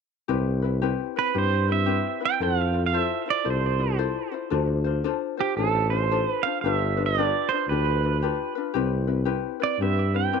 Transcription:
0.28 0.98 C2 medium
0.28 0.63 C4 medium
0.28 0.62 E4 medium
0.28 0.62 G4 medium
0.28 0.61 B4 medium
0.62 0.81 C4 soft
0.62 0.82 E4 soft
0.62 0.81 B4 medium
0.82 1.16 C4 medium
0.82 1.16 E4 medium
0.82 1.15 G4 medium
0.82 1.15 B4 medium
1.16 1.33 C4 soft
1.16 1.34 E4 soft
1.16 1.34 B4 soft
1.16 1.37 B4 medium
1.34 2.03 G2 medium
1.34 1.68 C4 medium
1.34 1.68 E4 medium
1.34 1.68 G4 medium
1.34 1.67 B4 medium
1.38 1.71 C5 medium
1.68 1.85 C4 soft
1.68 1.86 E4 soft
1.68 1.87 B4 soft
1.72 2.24 E5 medium
1.86 2.20 C4 medium
1.86 2.21 E4 medium
1.86 2.20 G4 medium
1.86 2.19 B4 medium
2.20 2.41 C4 soft
2.20 2.40 E4 soft
2.20 2.40 B4 medium
2.25 2.43 G5 medium
2.40 3.09 F2 medium
2.40 2.74 E4 medium
2.40 2.73 F4 medium
2.40 2.74 A4 medium
2.40 2.71 C5 medium
2.40 2.60 F#5 medium
2.60 2.86 F5 medium
2.73 2.92 E4 soft
2.73 2.93 F4 soft
2.73 2.92 C5 soft
2.86 2.97 F5 medium
2.93 3.27 E4 medium
2.93 3.26 F4 medium
2.93 3.27 A4 medium
2.93 3.25 C5 medium
2.97 3.29 E5 medium
3.26 3.43 E4 soft
3.26 3.44 F4 soft
3.26 3.44 C5 soft
3.30 3.48 D5 medium
3.44 4.14 C2 medium
3.44 3.79 E4 medium
3.44 3.78 F4 medium
3.44 3.79 A4 medium
3.44 3.77 C5 medium
3.50 3.97 C5 medium
3.78 3.98 E4 soft
3.78 3.97 F4 soft
3.78 3.98 C5 soft
3.98 4.32 E4 medium
3.98 4.31 F4 medium
3.98 4.32 A4 medium
3.98 4.30 C5 medium
4.32 4.51 E4 soft
4.32 4.50 F4 soft
4.32 4.50 C5 medium
4.50 5.08 D2 medium
4.50 4.85 D4 medium
4.50 4.85 F4 medium
4.50 4.85 A4 medium
4.50 4.83 C5 medium
4.84 5.03 D4 soft
4.84 5.04 F4 medium
4.84 5.04 C5 medium
5.04 5.38 D4 medium
5.04 5.37 F4 medium
5.04 5.38 A4 medium
5.04 5.36 C5 medium
5.37 5.57 D4 soft
5.37 5.57 F4 soft
5.37 5.56 G4 medium
5.37 5.57 C5 soft
5.57 6.26 A1 medium
5.57 5.91 D4 medium
5.57 5.91 F4 medium
5.57 5.92 A4 medium
5.57 5.91 A4 medium
5.57 5.89 C5 medium
5.90 6.10 D4 soft
5.90 6.10 F4 soft
5.90 6.30 C5 medium
5.90 6.10 C5 soft
6.11 6.44 D4 medium
6.11 6.44 F4 medium
6.11 6.44 A4 medium
6.11 6.44 C5 medium
6.30 6.45 B4 medium
6.43 6.64 D4 soft
6.43 6.64 F4 soft
6.43 6.63 C5 medium
6.43 6.61 F5 medium
6.61 7.32 G1 medium
6.61 6.98 D4 medium
6.61 6.97 G4 medium
6.61 6.72 F5 medium
6.66 6.97 F4 medium
6.66 6.96 B4 medium
6.72 7.02 E5 medium
6.97 7.17 D4 soft
6.97 7.17 F4 soft
6.97 7.16 B4 medium
7.06 7.23 D#5 medium
7.18 7.51 D4 medium
7.18 7.51 F4 medium
7.18 7.50 G4 medium
7.18 7.51 B4 medium
7.23 7.51 D5 medium
7.49 7.70 F4 soft
7.49 7.70 B4 soft
7.49 7.69 C5 medium
7.54 7.70 D4 soft
7.68 8.37 D2 medium
7.68 8.04 D4 medium
7.68 8.03 F4 medium
7.68 8.03 G4 soft
7.68 8.18 B4 medium
7.68 8.02 B4 medium
8.03 8.22 D4 soft
8.03 8.22 F4 soft
8.03 8.22 B4 soft
8.22 8.56 D4 medium
8.22 8.56 F4 medium
8.22 8.56 G4 medium
8.22 8.54 B4 medium
8.55 8.75 D4 soft
8.55 8.75 F4 medium
8.55 8.74 B4 medium
8.74 9.43 C2 medium
8.74 9.08 C4 medium
8.74 9.07 E4 medium
8.74 9.08 G4 medium
8.74 9.06 B4 medium
9.07 9.25 C4 soft
9.07 9.25 E4 soft
9.07 9.25 B4 soft
9.25 9.60 C4 medium
9.25 9.60 E4 medium
9.25 9.60 G4 medium
9.25 9.59 B4 medium
9.60 9.80 C4 soft
9.60 9.80 E4 soft
9.60 9.79 B4 soft
9.60 9.82 D5 medium
9.80 10.36 G2 medium
9.80 10.14 C4 medium
9.80 10.14 E4 medium
9.80 10.14 G4 soft
9.80 10.13 B4 medium
9.80 10.16 E5 medium
10.14 10.32 C4 soft
10.14 10.32 E4 soft
10.14 10.33 B4 soft
10.14 10.40 G5 medium
10.33 10.40 C4 medium
10.33 10.40 E4 medium
10.33 10.40 G4 medium
10.33 10.40 B4 medium

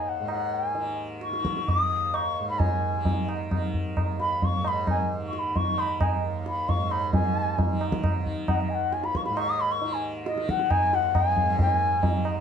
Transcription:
0.00 1.84 D#2 medium
0.00 0.20 G#2 medium
0.00 0.75 D#3 medium
0.00 0.10 G#5 medium
0.09 0.30 F#5 medium
0.20 2.39 G#2 medium
0.28 0.56 F#5 medium
0.28 tabla na medium
0.55 1.00 G#5 medium
0.75 1.31 D#3 medium
0.75 tabla tin medium
1.21 1.71 C#6 loud
1.21 tabla te medium
1.31 2.95 D#3 medium
1.31 tabla te medium
1.45 tabla ke medium
1.57 tabla te medium
1.68 2.16 D#6 loud
1.68 tabla tin medium
1.68 tabla ge medium
1.85 4.05 D#2 medium
2.14 2.48 C#6 medium
2.14 tabla na medium
2.40 4.60 G#2 medium
2.49 2.62 B5 medium
2.60 3.28 G#5 medium
2.60 tabla tin medium
2.60 tabla ge medium
2.95 3.51 D#3 medium
3.05 tabla tin medium
3.05 tabla ge medium
3.29 tabla na medium
3.51 5.13 D#3 medium
3.51 tabla na medium
3.51 tabla ge medium
3.74 tabla ge medium
3.97 tabla na medium
3.97 tabla ge medium
4.05 6.23 D#2 medium
4.20 4.46 B5 loud
4.20 tabla te medium
4.42 4.69 C#6 medium
4.42 tabla tin medium
4.42 tabla ge medium
4.60 6.77 G#2 medium
4.64 4.89 B5 medium
4.64 tabla na medium
4.87 5.10 G#5 medium
4.87 tabla na medium
4.87 tabla ge medium
5.13 5.70 D#3 medium
5.28 5.35 C#6 medium
5.33 5.40 C#6 medium
5.33 tabla te medium
5.39 5.58 B5 medium
5.56 5.81 C#6 medium
5.56 tabla tin medium
5.56 tabla ge medium
5.70 7.68 D#3 medium
5.78 6.01 B5 medium
5.78 tabla na medium
6.01 6.22 G#5 medium
6.01 tabla na medium
6.01 tabla ge medium
6.23 8.74 D#2 medium
6.46 6.71 B5 medium
6.46 tabla te medium
6.69 6.93 C#6 medium
6.69 tabla tin medium
6.69 tabla ge medium
6.77 7.14 G#2 medium
6.91 7.13 B5 medium
6.91 tabla na medium
7.13 9.28 G#2 medium
7.13 7.77 G#5 medium
7.13 tabla tin medium
7.13 tabla ge medium
7.58 tabla tin medium
7.58 tabla ge medium
7.68 8.20 D#3 medium
7.81 tabla na medium
7.92 tabla ke medium
8.04 tabla na medium
8.04 tabla ge medium
8.20 9.82 D#3 medium
8.26 tabla ge soft
8.48 8.62 F#5 medium
8.48 tabla na medium
8.48 tabla ge medium
8.60 8.71 D#5 medium
8.69 8.75 G#5 medium
8.74 10.89 D#2 medium
8.74 8.95 F#5 medium
8.93 9.06 G#5 loud
8.93 tabla te medium
9.04 9.18 B5 loud
9.04 tabla te medium
9.15 9.25 C#6 loud
9.15 tabla ke medium
9.25 11.43 G#2 medium
9.25 9.39 B5 medium
9.25 tabla te medium
9.37 9.51 C#6 loud
9.37 tabla na medium
9.50 9.62 D#6 loud
9.60 9.73 B5 loud
9.72 9.95 C#6 loud
9.82 10.36 D#3 medium
9.82 tabla tin medium
9.94 10.05 G#5 medium
10.26 10.51 D#5 loud
10.26 tabla te medium
10.36 11.95 D#3 medium
10.36 tabla te medium
10.49 10.72 F#5 loud
10.49 tabla ke medium
10.59 tabla te medium
10.71 10.96 G#5 loud
10.71 tabla na medium
10.71 tabla ge medium
10.89 12.40 D#2 medium
10.89 tabla te medium
10.95 11.17 F#5 loud
11.15 11.60 G#5 loud
11.15 tabla na medium
11.15 tabla ge medium
11.37 tabla ge medium
11.43 12.40 G#2 medium
11.59 12.23 G#5 loud
11.59 tabla tin medium
11.59 tabla ge medium
11.95 12.40 D#3 medium
12.03 tabla tin loud
12.03 tabla ge medium
12.25 tabla na medium

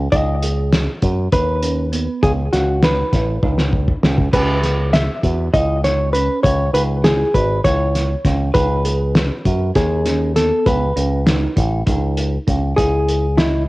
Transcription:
0.12 0.86 C#2 medium
0.12 0.36 D#4 medium
0.12 1.32 D#5 loud
0.12 kick loud
0.12 closed hi-hat medium
0.42 0.90 G#4 medium
0.42 closed hi-hat medium
0.73 snare loud
0.73 closed hi-hat medium
1.02 1.27 F#2 medium
1.02 1.26 F#4 medium
1.02 kick medium
1.02 closed hi-hat medium
1.32 2.06 D#2 medium
1.32 1.56 D#4 medium
1.32 2.25 B4 medium
1.32 kick medium
1.32 closed hi-hat medium
1.63 1.86 C#4 medium
1.63 closed hi-hat medium
1.92 2.40 B3 medium
1.92 closed hi-hat medium
2.23 2.47 C#2 medium
2.23 2.31 G#4 medium
2.23 kick loud
2.23 closed hi-hat medium
2.53 3.02 C#2 medium
2.53 2.76 C#4 medium
2.53 2.84 F#4 medium
2.53 snare soft
2.53 closed hi-hat medium
2.83 3.06 D#4 medium
2.83 4.00 B4 medium
2.83 snare loud
2.83 closed hi-hat medium
3.13 3.37 A1 medium
3.13 3.36 E4 medium
3.13 kick medium
3.13 snare soft
3.13 closed hi-hat medium
3.43 3.92 C#2 medium
3.43 3.90 D#4 medium
3.43 kick medium
3.58 snare medium
3.73 kick medium
3.88 kick medium
4.03 4.28 C#2 medium
4.03 4.27 C#4 medium
4.03 snare loud
4.18 kick medium
4.33 5.07 C#2 loud
4.33 4.57 C#4 medium
4.33 4.93 B4 medium
4.33 kick loud
4.33 closed hi-hat medium
4.33 crash medium
4.63 5.10 G#4 medium
4.63 snare soft
4.63 closed hi-hat medium
4.93 5.53 E5 loud
4.93 snare loud
4.93 closed hi-hat medium
5.23 5.48 E2 medium
5.23 5.47 F#4 medium
5.23 kick medium
5.23 closed hi-hat medium
5.53 6.28 C#2 medium
5.53 5.77 E4 medium
5.53 5.84 D#5 loud
5.53 kick medium
5.53 closed hi-hat medium
5.84 6.08 D#4 medium
5.84 6.12 C#5 medium
5.84 snare soft
5.84 closed hi-hat medium
6.13 6.62 C#4 medium
6.13 6.43 B4 medium
6.13 closed hi-hat medium
6.43 6.69 C#2 medium
6.43 6.74 C#5 medium
6.43 kick loud
6.43 closed hi-hat medium
6.73 7.23 C#2 medium
6.73 6.98 D#4 medium
6.73 6.82 B4 medium
6.73 closed hi-hat medium
7.04 7.28 E4 medium
7.04 7.35 G#4 medium
7.04 snare loud
7.04 closed hi-hat medium
7.34 7.59 G#1 medium
7.34 7.58 F#4 medium
7.34 7.64 B4 medium
7.34 kick medium
7.34 closed hi-hat medium
7.64 8.14 C#2 medium
7.64 8.12 E4 medium
7.64 8.28 C#5 loud
7.64 kick medium
7.64 snare soft
7.64 closed hi-hat medium
7.95 snare soft
7.95 closed hi-hat medium
8.25 8.50 C#2 medium
8.25 8.49 C#4 medium
8.25 kick medium
8.25 snare soft
8.25 closed hi-hat medium
8.54 9.29 C#2 loud
8.54 8.79 D#4 medium
8.54 9.79 B4 medium
8.54 kick loud
8.54 closed hi-hat medium
8.85 9.32 G#4 medium
8.85 closed hi-hat medium
9.15 snare loud
9.15 closed hi-hat medium
9.45 9.70 F#2 medium
9.45 9.69 F#4 medium
9.45 kick medium
9.45 closed hi-hat medium
9.75 10.50 D#2 medium
9.75 9.99 D#4 medium
9.75 10.32 G#4 medium
9.75 kick medium
9.75 snare soft
9.75 closed hi-hat medium
10.06 10.29 C#4 medium
10.06 snare soft
10.06 closed hi-hat medium
10.36 10.83 B3 medium
10.36 10.67 A4 medium
10.36 snare soft
10.36 closed hi-hat medium
10.66 10.91 C#2 medium
10.66 12.44 B4 medium
10.66 kick loud
10.66 closed hi-hat medium
10.96 11.46 C#2 medium
10.96 11.20 C#4 medium
10.96 closed hi-hat medium
11.26 11.50 D#4 medium
11.26 snare loud
11.26 closed hi-hat medium
11.56 11.82 A1 medium
11.56 11.80 E4 medium
11.56 kick medium
11.56 closed hi-hat medium
11.87 12.37 C#2 medium
11.87 12.34 D#4 medium
11.87 kick loud
11.87 closed hi-hat medium
12.17 closed hi-hat medium
12.47 12.72 C#2 medium
12.47 12.71 C#4 medium
12.47 kick medium
12.47 closed hi-hat medium
12.76 13.68 C#2 medium
12.76 13.25 E4 medium
12.76 13.39 G#4 medium
12.76 kick medium
12.76 closed hi-hat medium
13.08 closed hi-hat medium
13.37 13.66 E4 medium
13.37 13.62 D#5 medium
13.37 snare loud
13.37 closed hi-hat medium

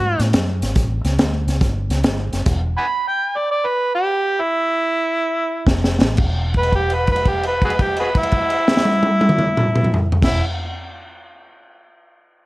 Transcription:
0.00 0.19 G#2 medium
0.00 0.20 F#4 medium
0.20 0.33 A2 medium
0.20 snare soft
0.20 closed hi-hat medium
0.33 0.61 F#2 medium
0.33 snare loud
0.33 closed hi-hat medium
0.62 0.75 G#1 medium
0.62 snare soft
0.62 closed hi-hat medium
0.76 1.04 A1 medium
0.76 kick loud
0.76 snare soft
0.76 closed hi-hat medium
1.05 1.18 C#2 medium
1.05 snare soft
1.05 closed hi-hat medium
1.18 1.46 D2 medium
1.18 snare loud
1.18 closed hi-hat medium
1.47 1.61 C#2 medium
1.47 snare soft
1.47 closed hi-hat medium
1.61 1.89 G1 loud
1.61 kick loud
1.61 snare soft
1.61 closed hi-hat medium
1.90 2.03 C#2 medium
1.90 snare soft
1.90 closed hi-hat medium
2.04 2.32 G1 medium
2.04 snare loud
2.04 closed hi-hat medium
2.33 2.46 F#1 medium
2.33 snare soft
2.33 closed hi-hat medium
2.46 2.74 E1 medium
2.46 kick loud
2.46 snare soft
2.46 closed hi-hat medium
2.46 crash medium
2.78 2.85 F#5 medium
2.78 2.86 G#5 medium
2.78 3.04 B5 loud
3.08 3.39 G5 medium
3.37 3.49 D5 medium
3.51 3.68 D5 loud
3.66 3.93 B4 loud
3.95 4.43 G4 loud
4.41 5.81 E4 loud
5.67 6.00 F1 medium
5.67 kick medium
5.67 snare medium
5.84 snare medium
6.01 6.18 A1 medium
6.01 snare loud
6.17 10.09 E1 medium
6.17 kick loud
6.17 crash medium
6.54 kick medium
6.54 crash soft
6.58 6.73 B4 loud
6.63 crash soft
6.72 6.95 G4 medium
6.72 kick medium
6.72 crash soft
6.90 7.09 B4 medium
6.90 crash soft
7.07 kick medium
7.07 crash soft
7.12 7.30 B4 medium
7.16 crash soft
7.25 7.44 G4 medium
7.25 kick medium
7.25 crash soft
7.43 7.63 B4 medium
7.43 crash soft
7.62 7.71 F#4 medium
7.62 7.73 G#4 medium
7.62 7.83 B4 medium
7.62 kick medium
7.62 crash soft
7.70 crash soft
7.79 7.98 G4 medium
7.79 kick medium
7.79 crash medium
7.97 8.08 F#4 medium
7.97 8.08 G#4 medium
7.97 8.20 B4 medium
7.97 crash soft
8.15 10.11 E4 loud
8.15 kick medium
8.15 crash medium
8.23 crash medium
8.32 kick medium
8.32 crash medium
8.50 crash soft
8.68 snare medium
8.77 snare medium
8.85 high tom medium
9.03 high tom medium
9.21 high tom medium
9.29 mid tom loud
9.39 mid tom medium
9.57 mid tom loud
9.76 mid tom loud
9.84 mid tom medium
9.94 floor tom loud
10.12 floor tom loud
10.22 10.40 E1 medium
10.22 10.42 E4 medium
10.22 kick loud
10.22 snare medium
10.22 crash loud

